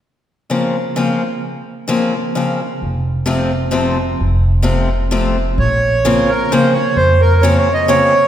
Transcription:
<<
  \new Staff \with { instrumentName = "Accordion" } { \time 3/4 \key bes \minor \tempo 4 = 130 r2. | r2. | r2. | r2. |
des''4. bes'8 c''8 des''8 | c''8 bes'8 \tuplet 3/2 { des''8 des''8 ees''8 } des''4 | }
  \new Staff \with { instrumentName = "Steel-string acoustic guitar" } { \clef bass \time 3/4 \key bes \minor r4 <des f bes c'>8 r8 <des f bes c'>8 r8 | r4 <des f bes c'>8 r8 <des f bes c'>8 r8 | r4 <c f a c'>8 r8 <c f a c'>8 r8 | r4 <c f a c'>8 r8 <c f a c'>8 r8 |
r4 <des f bes c'>8 r8 <des f bes c'>8 r8 | r4 <des f bes c'>8 r8 <des f bes c'>8 r8 | }
  \new Staff \with { instrumentName = "Upright bass" } { \clef bass \time 3/4 \key bes \minor r2. | r2. | f,,2. | f,,2. |
bes,,2 r4 | f,2 r4 | }
>>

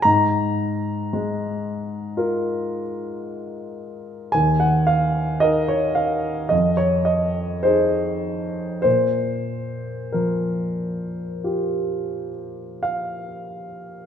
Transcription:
\new Staff \with { instrumentName = "Grand piano" } { \time 4/4 \key aes \major \tempo 4 = 54 << { bes''1 | aes''16 ges''16 f''8 ees''16 des''16 f''8 ees''16 des''16 ees''8 c''4 | c''4 bes'2 f''4 | } \\ { aes,4 aes4 <f' bes'>2 | ees,4 <ees' bes'>4 f,4 <ees' aes'>4 | bes,4 f4 <f' g'>2 | } >> }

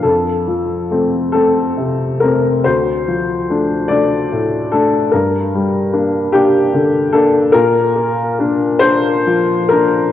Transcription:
<<
  \new Staff \with { instrumentName = "Upright piano" } { \time 6/8 \key d \minor \tempo 4. = 47 a'4. a'4 bes'8 | c''4. d''4 a'8 | bes'4. g'4 a'8 | bes'4. c''4 bes'8 | }
  \new Staff \with { instrumentName = "Upright piano" } { \time 6/8 \key d \minor f,8 f8 <a c'>8 <a c'>8 c8 <a c'>8 | d,8 f8 <a d'>8 <a d'>8 a,8 <a d'>8 | g,8 g8 <bes d'>8 <bes d'>8 d8 <bes d'>8 | bes,8 bes8 <bes d'>8 <bes d'>8 f8 <bes d'>8 | }
>>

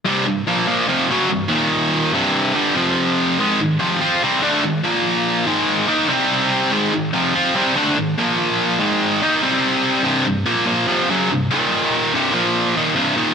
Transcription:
\new Staff \with { instrumentName = "Distorted electric guitar" } { \clef bass \time 4/4 \key c \minor \tempo 4 = 144 <c, g, c>8 <c, g,>8 <bes, f bes>8 <bes, f bes>8 <f, c f>8 <fis, des fis>8 <c, g,>8 <ees, bes, ees>8~ | <ees, bes, ees>4 <c, g, c>4 <g, d g>8 <f, c f>4. | <aes, ees aes>8 <aes, ees>8 <f, c f>8 <f c' f'>8 <c g c'>8 <d a d'>8 <aes, ees>8 <bes, f bes>8~ | <bes, f bes>4 <aes, ees aes>4 <ees bes ees'>8 <c g c'>4. |
<aes, ees aes>8 <aes, ees>8 <f, c f>8 <f c' f'>8 <c g c'>8 <d a d'>8 <aes, ees>8 <bes, f bes>8~ | <bes, f bes>4 <aes, ees aes>4 <ees bes ees'>8 <c g c'>4. | <c, g, c>8 <c, g,>8 <bes, f bes>8 <bes, f bes>8 <f, c f>8 <fis, des fis>8 <c, g,>8 <ees, bes, ees>8~ | <ees, bes, ees>4 <c, g, c>8 <bes, f bes>4 <ees, bes, ees>8 <c, g, c>8 <ees, bes, ees>8 | }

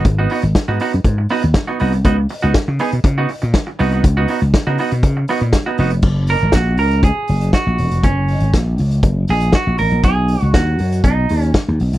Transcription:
<<
  \new Staff \with { instrumentName = "Clean electric guitar" } { \time 4/4 \key fis \major \tempo 4 = 120 r16 <b dis' fis'>16 <b dis' fis'>16 r8 <b dis' fis'>16 <b dis' fis'>16 r8. <b dis' fis'>16 r8 <b dis' fis'>16 <b dis' fis'>16 r16 | <b dis' fis'>16 r8 <b dis' fis'>16 r8 <b dis' gis'>16 r8 <b dis' fis'>16 r4 <b dis' fis'>16 <b dis' fis'>16 | r16 <b dis' fis'>16 <b dis' fis'>16 r8 <b dis' fis'>16 <b dis' fis'>16 r8. <b dis' fis'>16 r8 <b dis' fis'>16 <b dis' fis'>16 r16 | r8 ais'8 fis'8 ais'8 gis'4 fis'4 |
cis'4 r4. gis'8 fis'8 ais'8 | gis'4 fis'4 dis'4 r4 | }
  \new Staff \with { instrumentName = "Slap bass" } { \clef bass \time 4/4 \key fis \major gis,,8 r16 gis,,16 r16 gis,16 r16 fis,16 gis,8 r16 dis,16 r8 bis,,8 | cis,8 r16 cis,16 r16 cis16 r16 b,16 cis8 r16 ais,16 r8 bis,,8 | cis,8 r16 cis,16 r16 cis16 r16 b,16 cis8 r16 ais,16 r8 eis,,8 | fis,,8. gis,,16 ais,,8 cis,8. r16 fis,,8 r16 ais,,16 e,,16 eis,,16 |
fis,,8. gis,,16 ais,,8 cis,8 fis,,8 ais,,8 r16 ais,,16 a,,16 ais,,16 | b,,8. cis,16 dis,8 fis,8 b,,8 dis,8 r16 dis,16 b,,16 bis,,16 | }
  \new DrumStaff \with { instrumentName = "Drums" } \drummode { \time 4/4 <hh bd>8 hho16 hh16 <hh bd sn>8 hho16 hh16 <hh bd>8 hho16 hh16 <hh bd sn>8 hho16 hh16 | <hh bd>8 hho16 hh16 <hh bd sn>8 hho16 hh16 <hh bd>8 hho16 hh16 <hh bd sn>8 hho16 hh16 | <hh bd>8 hho16 hh16 <hh bd sn>8 hho16 hh16 <hh bd>8 hho16 hh16 <hh bd sn>8 hho16 hh16 | <cymc bd>8 hho16 hh16 <hh bd sn>8 hho16 hh16 <hh bd>8 hho16 hh16 <hh bd sn>8 hho16 hh16 |
<hh bd>8 hho16 hh16 <hh bd sn>8 hho16 hh16 <hh bd>8 hho16 hh16 <hh bd sn>8 hho16 hh16 | <hh bd>8 hho16 hh16 <hh bd sn>8 hho16 hh16 <hh bd>8 hho16 hh16 <hh bd sn>8 hho16 hh16 | }
>>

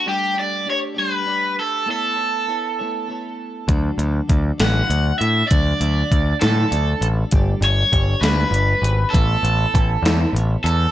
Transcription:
<<
  \new Staff \with { instrumentName = "Overdriven electric guitar" } { \time 6/8 \key d \major \tempo 4. = 66 g'8 d''8 cis''8 b'4 a'8 | a'2 r4 | r4. fis''4 e''8 | d''4. a'4 r8 |
r8 cis''4 b'4. | a'2 r8 a'8 | }
  \new Staff \with { instrumentName = "Clean electric guitar" } { \time 6/8 \key d \major <g a d' g' d''>8 <d' g' d''>8 <a d' g' d''>8 <g a d' g' d''>8 <a d' g' d''>4 | <a b e' a' cis''>8 <e' a' cis''>8 <b e' a' cis''>8 <a b e' a' cis''>8 <b e' a' cis''>4 | <d fis a d' fis' d''>8 <a d' fis' d''>8 <a d' fis' d''>8 <d fis a d' fis' d''>8 <a d' fis' d''>4 | <d fis a d' fis' d''>8 <a d' fis' d''>8 <a d' fis' d''>8 <d fis a d' fis' d''>8 <a d' fis' d''>4 |
<g a d' g' d''>8 <d' g' d''>8 <a d' g' d''>8 <g a d' g' d''>8 <a d' g' d''>4 | <a b e' a' cis''>8 <e' a' cis''>8 <b e' a' cis''>8 <a b e' a' cis''>8 <b e' a' cis''>4 | }
  \new Staff \with { instrumentName = "Picked electric bass" } { \clef bass \time 6/8 \key d \major r2. | r2. | d,8 d,8 d,8 a,,8 d,8 a,8 | d,8 d,8 d,8 a,8 d,8 a,,8 |
g,,8 g,,8 g,,8 d,8 g,,8 gis,,8 | a,,8 a,,8 a,,8 e,8 a,,8 e,8 | }
  \new DrumStaff \with { instrumentName = "Drums" } \drummode { \time 6/8 r4. r4. | r4. r4. | <hh bd>8 hh8 <hh bd>8 <hh sn>8 hh8 hh8 | <hh bd>8 hh8 <hh bd>8 <hh sn>8 hh8 hh8 |
<hh bd>8 hh8 <hh bd>8 <hh sn>8 hh8 hh8 | <hh bd>8 hh8 <hh bd>8 <hh sn>8 hh8 hh8 | }
>>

